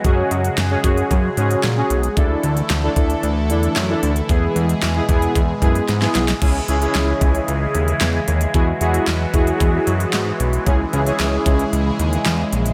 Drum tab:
CC |----------------|----------------|----------------|x---------------|
HH |x-xxx-xxx-xxx-xx|x-xxx-xxx-xxx-xx|x-xxx-xxx-xxx-xx|x-xxx-xxx-xxx-xx|
CP |----------------|----x-------x---|----x-----------|----x-------x---|
SD |----o-------o---|----o-------o---|----o-------oooo|----o-------o---|
BD |o-----o-o-------|o-----o---------|o-----o-o-o-----|o-----o---------|

CC |----------------|----------------|
HH |x-xxx-xxx-xxx-xx|x-xxx-xxx-xxx-xx|
CP |----x-------x---|----x-------x---|
SD |----o-------o---|----o-------o---|
BD |o-----o-o-------|o-----o---------|